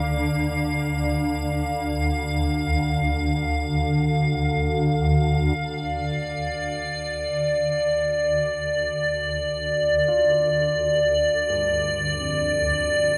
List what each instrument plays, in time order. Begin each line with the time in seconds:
Already playing: synth drone D2 D3, ambient pad F5
5.57 synth drone D2 D3, ambient pad D5
10.08 grand piano F4
11.50 grand piano G2
12.20 grand piano F2